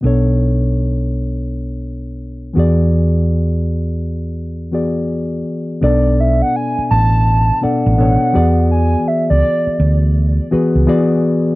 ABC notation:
X:1
M:4/4
L:1/16
Q:"Swing 16ths" 1/4=83
K:Bdor
V:1 name="Soft synth lead"
z16 | z16 | d2 e f g2 a4 f6 | g2 e d4 z8 z |]
V:2 name="Reed electric piano"
[B,,B,DAc]12- [B,,B,DAc]2 [E,B,FGd]2- | [E,B,FGd]8- [E,B,FGd]2 [E,B,FGd]6 | [B,,B,DAd]6 z4 [B,,B,DAd]2 [B,,B,DAc]2 [E,B,FGd]2- | [E,B,FGd]4 z6 [E,B,FGB]2 [E,B,FGd]3 z |]
V:3 name="Fingered electric bass" clef=bass
B,,,12- B,,,2 E,,2- | E,,12- E,,2 z2 | B,,,4 z2 A,,,4 z A,,,2 z E,,2- | E,,2 z C,, z2 D,,4 z C,, z4 |]